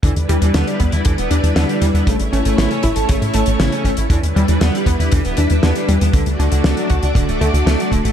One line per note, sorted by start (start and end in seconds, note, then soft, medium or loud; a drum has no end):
0.03 0.13 E2 medium
0.03 0.24 D3 medium
0.03 0.10 E3 medium
0.03 2.05 G3 medium
0.03 2.05 D4 medium
0.03 4.07 E4 medium
0.03 2.05 B4 medium
0.03 kick loud
0.03 closed hi-hat medium
0.16 0.26 E2 medium
0.16 closed hi-hat medium
0.29 0.39 E2 medium
0.29 0.33 E3 medium
0.29 0.49 G3 loud
0.29 closed hi-hat medium
0.42 0.52 E2 medium
0.42 0.48 E3 medium
0.42 closed hi-hat medium
0.54 0.65 E2 loud
0.54 0.75 D3 medium
0.54 0.64 B3 medium
0.54 snare loud
0.54 closed hi-hat loud
0.67 0.77 G3 medium
0.67 closed hi-hat medium
0.80 0.90 E2 loud
0.80 1.00 B3 loud
0.80 kick medium
0.80 closed hi-hat medium
0.92 1.03 E2 medium
0.92 0.99 E4 medium
0.92 closed hi-hat medium
1.05 1.16 E2 loud
1.05 1.30 D3 medium
1.05 1.12 E3 loud
1.05 kick loud
1.05 closed hi-hat loud
1.18 1.28 E1 medium
1.18 1.28 B3 loud
1.18 closed hi-hat medium
1.31 1.41 E2 medium
1.31 1.35 E3 medium
1.31 1.55 D4 medium
1.31 closed hi-hat medium
1.43 1.53 E2 medium
1.43 closed hi-hat medium
1.56 1.66 E2 loud
1.56 1.76 D3 loud
1.56 1.66 B3 medium
1.56 snare loud
1.56 closed hi-hat loud
1.69 1.79 G3 medium
1.69 closed hi-hat medium
1.82 1.92 E2 medium
1.82 1.86 E3 medium
1.82 1.94 G3 medium
1.82 closed hi-hat medium
1.94 2.04 E2 medium
1.94 1.98 B3 medium
1.94 closed hi-hat medium
2.07 2.17 A1 medium
2.07 2.27 C#3 medium
2.07 2.14 A3 medium
2.07 4.09 A3 medium
2.07 4.09 C#4 medium
2.07 4.09 C#5 medium
2.07 kick loud
2.07 closed hi-hat medium
2.20 2.30 A1 medium
2.20 closed hi-hat medium
2.33 2.43 A1 medium
2.33 2.36 A3 medium
2.33 2.53 C#4 medium
2.33 closed hi-hat medium
2.45 2.55 A1 medium
2.45 2.52 A3 medium
2.45 closed hi-hat medium
2.58 2.68 A1 loud
2.58 2.70 C#3 medium
2.58 2.68 E4 medium
2.58 snare loud
2.58 closed hi-hat loud
2.71 2.80 C#4 medium
2.71 closed hi-hat medium
2.83 2.94 A1 loud
2.83 3.04 E4 loud
2.83 kick medium
2.83 closed hi-hat medium
2.96 3.06 A1 medium
2.96 3.02 A4 medium
2.96 closed hi-hat medium
3.09 3.19 A1 loud
3.09 3.33 C#3 medium
3.09 3.15 A3 loud
3.09 kick loud
3.09 closed hi-hat medium
3.21 3.32 A2 medium
3.21 3.31 E4 loud
3.21 closed hi-hat soft
3.34 3.44 A1 medium
3.34 3.38 A3 medium
3.34 3.46 A3 loud
3.34 closed hi-hat medium
3.46 3.57 A1 medium
3.46 closed hi-hat medium
3.59 3.70 A1 loud
3.59 3.80 C#3 loud
3.59 3.69 E4 medium
3.59 snare loud
3.59 closed hi-hat medium
3.72 3.82 C#4 medium
3.72 closed hi-hat medium
3.84 3.95 A1 medium
3.84 3.89 A3 medium
3.84 4.09 C#4 medium
3.84 kick medium
3.84 closed hi-hat medium
3.97 4.08 A1 medium
3.97 4.02 E4 medium
3.97 closed hi-hat medium
4.10 4.20 E2 medium
4.10 4.31 D3 medium
4.10 4.17 E3 medium
4.10 6.12 G3 medium
4.10 8.12 D4 medium
4.10 6.12 E4 medium
4.10 6.12 B4 medium
4.10 kick loud
4.10 closed hi-hat medium
4.23 4.33 E2 medium
4.23 closed hi-hat medium
4.36 4.46 E2 loud
4.36 4.40 E3 medium
4.36 4.56 G3 loud
4.36 closed hi-hat soft
4.48 4.59 E2 medium
4.48 4.55 E3 medium
4.48 closed hi-hat medium
4.61 4.71 E2 loud
4.61 4.82 D3 medium
4.61 4.71 B3 medium
4.61 snare loud
4.61 closed hi-hat medium
4.74 4.84 G3 medium
4.74 closed hi-hat medium
4.86 4.97 E2 medium
4.86 5.07 B3 medium
4.86 kick medium
4.86 closed hi-hat medium
4.99 5.10 E2 medium
4.99 5.06 E4 medium
4.99 closed hi-hat medium
5.12 5.22 E2 loud
5.12 5.37 D3 medium
5.12 5.19 E3 loud
5.12 kick loud
5.12 closed hi-hat loud
5.25 5.35 E1 medium
5.25 5.35 B3 medium
5.25 closed hi-hat soft
5.37 5.48 E2 medium
5.37 5.42 E3 medium
5.37 5.62 D4 medium
5.37 closed hi-hat medium
5.50 5.60 E2 medium
5.50 closed hi-hat medium
5.63 5.73 E2 loud
5.63 5.83 D3 loud
5.63 5.73 B3 medium
5.63 snare loud
5.63 closed hi-hat medium
5.76 5.86 G3 medium
5.76 closed hi-hat medium
5.88 5.99 E2 medium
5.88 5.92 E3 medium
5.88 6.01 G3 medium
5.88 closed hi-hat medium
6.01 6.11 E2 medium
6.01 6.05 B3 medium
6.01 closed hi-hat medium
6.13 6.24 D2 medium
6.13 6.20 D3 medium
6.13 6.34 D3 medium
6.13 8.12 A3 medium
6.13 8.12 F#4 medium
6.13 8.12 D5 medium
6.13 kick loud
6.13 closed hi-hat medium
6.26 6.37 D2 medium
6.26 closed hi-hat soft
6.39 6.49 D2 medium
6.39 6.43 D3 medium
6.39 6.60 D4 medium
6.39 closed hi-hat medium
6.52 6.62 D2 medium
6.52 6.59 D3 medium
6.52 closed hi-hat medium
6.64 6.75 D2 loud
6.64 6.77 D3 medium
6.64 6.74 A3 medium
6.64 snare loud
6.64 closed hi-hat loud
6.77 6.87 F#3 medium
6.77 closed hi-hat medium
6.90 7.00 D2 medium
6.90 7.10 F#4 loud
6.90 kick medium
6.90 closed hi-hat medium
7.03 7.13 D2 medium
7.03 7.09 D4 medium
7.03 closed hi-hat medium
7.15 7.25 D1 loud
7.15 7.40 D3 medium
7.15 7.22 D3 loud
7.15 kick loud
7.15 closed hi-hat medium
7.28 7.38 D1 medium
7.28 7.38 A3 medium
7.28 closed hi-hat soft
7.41 7.51 D2 medium
7.41 7.45 D3 medium
7.41 7.61 A3 loud
7.41 closed hi-hat medium
7.53 7.64 D2 medium
7.53 closed hi-hat medium
7.66 7.76 D2 loud
7.66 7.79 A3 medium
7.66 7.76 A3 medium
7.66 snare loud
7.66 closed hi-hat loud
7.80 7.89 F#3 medium
7.80 closed hi-hat medium
7.92 8.02 D1 medium
7.92 7.96 D3 medium
7.92 8.04 A3 medium
7.92 kick medium
7.92 closed hi-hat medium
8.04 8.12 A1 medium
8.04 8.09 A3 medium
8.04 closed hi-hat medium